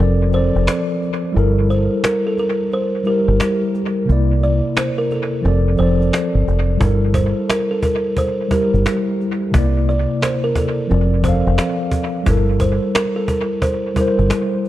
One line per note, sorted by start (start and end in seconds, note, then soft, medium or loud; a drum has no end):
0.00 0.51 F1 loud
0.00 0.26 F3 medium
0.00 0.27 C4 medium
0.00 0.28 A4 medium
0.00 0.30 A4 medium
0.00 0.29 D5 medium
0.29 1.06 F3 medium
0.29 1.07 C4 medium
0.29 cajon slap soft
0.34 1.09 A4 medium
0.34 0.86 C5 medium
0.34 1.10 D5 medium
0.56 0.66 F1 medium
0.56 cajon slap soft
0.67 cajon slap medium
1.02 cajon slap soft
1.32 2.33 G3 medium
1.32 2.34 E4 medium
1.36 1.87 G1 loud
1.36 2.35 A4 medium
1.36 2.36 A#4 medium
1.36 cajon slap soft
1.70 2.00 C5 medium
1.70 cajon slap soft
2.04 2.23 A#4 medium
2.04 cajon slap loud
2.27 2.37 A4 medium
2.38 2.69 A#4 medium
2.38 cajon slap soft
2.72 3.03 C5 medium
2.72 cajon slap soft
3.03 3.80 G3 medium
3.03 3.81 E4 medium
3.03 3.58 A#4 medium
3.03 cajon slap soft
3.08 3.82 G4 medium
3.08 3.83 A#4 medium
3.28 3.39 G1 medium
3.28 cajon slap soft
3.40 cajon slap medium
3.75 cajon slap soft
4.05 5.06 C3 medium
4.05 5.07 A#3 medium
4.09 4.60 C2 medium
4.09 5.08 E4 medium
4.09 5.09 D5 medium
4.09 cajon slap soft
4.43 4.73 D5 medium
4.43 cajon slap soft
4.77 4.96 C5 medium
4.77 cajon slap loud
4.98 5.09 A#4 medium
5.11 5.75 A4 medium
5.11 cajon slap soft
5.41 5.76 F1 loud
5.41 5.72 F3 medium
5.41 5.73 C4 medium
5.41 cajon slap soft
5.46 5.74 A4 medium
5.46 5.75 D5 medium
5.76 6.10 F1 medium
5.76 6.52 F3 medium
5.76 6.54 C4 medium
5.76 6.31 C5 medium
5.76 cajon slap soft
5.81 6.55 A4 medium
5.81 6.56 D5 medium
6.01 cajon slap soft
6.13 cajon slap medium
6.35 6.46 G1 medium
6.48 6.78 F1 medium
6.48 cajon slap soft
6.70 cajon slap soft
6.77 7.32 G1 medium
6.77 7.78 G3 medium
6.77 7.79 E4 medium
6.77 cajon bass loud
6.82 7.81 A4 medium
6.82 7.82 A#4 medium
7.14 7.45 C5 medium
7.14 cajon bass medium
7.50 7.68 A#4 medium
7.50 cajon slap medium
7.50 cajon slap loud
7.71 7.82 A4 medium
7.83 8.14 A#4 medium
7.83 cajon bass medium
8.17 8.52 C5 medium
8.17 cajon bass medium
8.49 9.25 G3 medium
8.49 9.26 E4 medium
8.49 9.04 A#4 medium
8.49 cajon bass medium
8.53 9.27 G4 medium
8.53 9.29 A#4 medium
8.74 8.85 G1 medium
8.74 cajon slap soft
8.86 cajon slap medium
9.21 cajon slap soft
9.51 10.05 C2 medium
9.51 10.52 C3 medium
9.51 10.53 A#3 medium
9.51 cajon bass loud
9.56 10.54 E4 medium
9.56 10.55 D5 medium
9.89 10.19 D5 medium
9.89 cajon slap soft
10.22 10.42 C5 medium
10.22 cajon slap medium
10.22 cajon slap loud
10.44 10.55 A#4 medium
10.55 11.21 A4 medium
10.55 cajon bass medium
10.87 11.42 F1 loud
10.87 11.17 F3 medium
10.87 11.19 C4 medium
10.87 cajon slap soft
10.92 11.20 A4 medium
10.92 11.21 D5 medium
11.22 11.98 F3 medium
11.22 11.99 C4 medium
11.22 11.76 C5 medium
11.22 cajon bass medium
11.26 12.00 A4 medium
11.26 12.01 F5 medium
11.47 11.57 F1 medium
11.47 cajon slap soft
11.58 cajon slap medium
11.91 cajon bass medium
12.23 12.78 G1 medium
12.23 13.24 G3 medium
12.23 13.25 E4 medium
12.23 cajon bass loud
12.28 13.26 A4 medium
12.28 13.28 A#4 medium
12.60 12.91 C5 medium
12.60 cajon bass medium
12.95 13.14 A#4 medium
12.95 cajon slap loud
13.16 13.27 A4 medium
13.28 13.62 A#4 medium
13.28 cajon bass medium
13.62 13.93 C5 medium
13.62 cajon bass medium
13.94 14.69 G3 medium
13.94 14.69 E4 medium
13.94 14.49 A#4 medium
13.94 cajon bass medium
13.99 14.69 A#4 medium
13.99 14.69 C5 medium
14.19 14.30 G1 medium
14.19 cajon slap soft
14.30 cajon slap medium
14.30 cajon slap loud
14.65 cajon slap soft